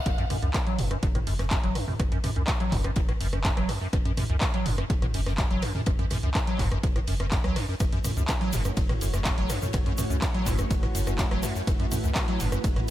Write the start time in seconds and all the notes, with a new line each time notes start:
0.06 F#1 F#2, kick, cross-stick, closed hi-hat, ride
0.18 F#2, closed hi-hat
0.30 F#2, cross-stick, mid tom, open hi-hat, ride
0.42 C#2 F#2, closed hi-hat
0.54 G2, kick, cross-stick, snare, clap, closed hi-hat, ride
0.67 F#3, closed hi-hat
0.79 F#1 F#2, mid tom, open hi-hat, ride
0.91 F#2, cross-stick, closed hi-hat
1.03 F#1, kick, closed hi-hat, ride
1.15 A2, cross-stick, closed hi-hat, mid tom
1.27 F#1 F#2, open hi-hat, ride
1.39 F#2, cross-stick, snare, closed hi-hat
1.51 F#2, kick, snare, clap, closed hi-hat, ride
1.63 F#1 F#3, closed hi-hat
1.75 F#2, cross-stick, open hi-hat, ride
1.88 F#2, mid tom
1.99 F#1 F#2, kick, cross-stick, closed hi-hat, ride
2.12 F#2, closed hi-hat
2.23 F#2, cross-stick, snare, mid tom, open hi-hat, ride
2.36 C#2 F#2, closed hi-hat
2.47 G2, kick, cross-stick, snare, clap, closed hi-hat, ride
2.60 F#3, closed hi-hat, ride
2.72 F#1 F#2, kick, clap, mid tom, open hi-hat, ride
2.84 F#2, cross-stick, closed hi-hat
2.96 F#1, kick, closed hi-hat, ride
3.09 A2, cross-stick, closed hi-hat
3.20 F#1 F#2, open hi-hat, ride
3.33 F#2, cross-stick, closed hi-hat
3.44 F#2, kick, snare, clap, closed hi-hat, ride
3.57 F#1 F#3, cross-stick, closed hi-hat
3.69 F#2, cross-stick, open hi-hat, ride
3.81 F#2
3.93 F#1 F#2, kick, cross-stick, closed hi-hat, ride
4.05 F#2, closed hi-hat
4.17 F#2, cross-stick, mid tom, open hi-hat, ride
4.30 C#2 F#2, closed hi-hat
4.41 G2, kick, cross-stick, snare, clap, closed hi-hat, ride
4.54 F#3, closed hi-hat
4.66 F#1 F#2, mid tom, open hi-hat, ride
4.78 F#2, cross-stick, closed hi-hat
4.90 F#1, kick, closed hi-hat, ride
5.02 A2, cross-stick, closed hi-hat, mid tom
5.14 F#1 F#2, open hi-hat, ride
5.26 F#2, cross-stick, snare, closed hi-hat
5.38 F#2, kick, snare, clap, closed hi-hat, ride
5.51 F#1 F#3, closed hi-hat
5.62 F#2, cross-stick, open hi-hat, ride
5.75 F#2, mid tom
5.86 F#1 F#2, kick, cross-stick, closed hi-hat, ride
5.99 F#2, closed hi-hat
6.10 F#2, cross-stick, snare, mid tom, open hi-hat, ride
6.23 C#2 F#2, closed hi-hat
6.35 G2, kick, cross-stick, snare, clap, closed hi-hat, ride
6.47 F#3, closed hi-hat, ride
6.59 F#1 F#2, kick, clap, mid tom, open hi-hat, ride
6.72 F#2, cross-stick, closed hi-hat
6.83 F#1, kick, closed hi-hat, ride
6.96 A2, cross-stick, closed hi-hat
7.07 F#1 F#2, open hi-hat, ride
7.20 F#2, cross-stick, closed hi-hat
7.31 F#2, kick, snare, clap, closed hi-hat, ride
7.44 C#2 F#3, cross-stick, closed hi-hat
7.56 F#2, cross-stick, open hi-hat, ride
7.68 F#2
7.80 F#1 F#2 A3 E4 F#4 C#5, kick, cross-stick, closed hi-hat, ride, shaker
7.93 F#2, closed hi-hat
8.04 F#2, cross-stick, mid tom, open hi-hat, ride, shaker
8.17 C#2 F#2, closed hi-hat, shaker
8.28 F#2, kick, cross-stick, snare, clap, closed hi-hat, ride, shaker
8.41 F#3, closed hi-hat
8.53 F#1 F#2, mid tom, open hi-hat, ride, shaker
8.65 F#2, cross-stick, closed hi-hat, shaker
8.77 F#1, kick, closed hi-hat, ride, shaker
8.89 A2, cross-stick, closed hi-hat, mid tom
9.01 F#1 F#2, open hi-hat, ride, shaker
9.14 F#2, cross-stick, snare, closed hi-hat, shaker
9.25 F#2, kick, snare, clap, closed hi-hat, ride, shaker
9.38 F#1 F#3, closed hi-hat
9.49 F#2, cross-stick, open hi-hat, ride, shaker
9.62 F#2, mid tom, shaker
9.73 F#1 F#2, kick, cross-stick, closed hi-hat, ride, shaker
9.86 F#2, closed hi-hat
9.98 F#2, cross-stick, snare, mid tom, open hi-hat, ride, shaker
10.10 C#2 F#2, closed hi-hat, shaker
10.22 F#2, kick, cross-stick, snare, clap, closed hi-hat, ride, shaker
10.34 F#3, closed hi-hat, ride
10.46 F#1 F#2, kick, clap, mid tom, open hi-hat, ride, shaker
10.58 F#2, cross-stick, closed hi-hat, shaker
10.70 F#1, kick, closed hi-hat, ride, shaker
10.83 A2, cross-stick, closed hi-hat
10.95 F#1 F#2, open hi-hat, ride, shaker
11.07 F#2, cross-stick, closed hi-hat, shaker
11.18 F#2, kick, snare, clap, closed hi-hat, ride, shaker
11.31 F#1 F#3, cross-stick, closed hi-hat
11.43 F#2, cross-stick, open hi-hat, ride, shaker
11.55 F#2, shaker
11.67 F#1 F#2 B4, kick, cross-stick, closed hi-hat, ride, shaker
11.80 F#2, closed hi-hat
11.92 F#2, cross-stick, mid tom, open hi-hat, ride, shaker
12.04 C#2 F#2, closed hi-hat, shaker
12.15 F#2, kick, cross-stick, snare, clap, closed hi-hat, ride, shaker
12.28 F#3, closed hi-hat
12.40 F#1 F#2, mid tom, open hi-hat, ride, shaker
12.52 F#2, cross-stick, closed hi-hat, shaker
12.64 F#1, kick, closed hi-hat, ride, shaker
12.76 A2, cross-stick, closed hi-hat, mid tom